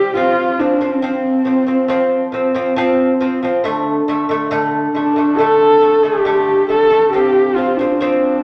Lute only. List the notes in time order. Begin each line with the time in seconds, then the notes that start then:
Already playing: C3 G3
0.15 F3 C4
0.59 F3 C4
0.81 F3 C4
1.02 F3 C4
1.45 F3 C4
1.67 F3 C4
1.88 F3 C4
2.32 F3 C4
2.55 F3 C4
2.76 F3 C4
3.21 F3 C4
3.43 F3 C4
3.64 D3 A3
4.08 D3 A3
4.29 D3 A3
4.51 D3 A3
4.95 D3 A3
5.16 D3 A3
5.39 D3 A3
5.81 D3 A3
6.03 D3 A3
6.25 D3 A3
6.69 D3 A3
6.91 D3 A3
7.13 F3 C4
7.56 F3 C4
7.79 F3 C4
8.01 F3 C4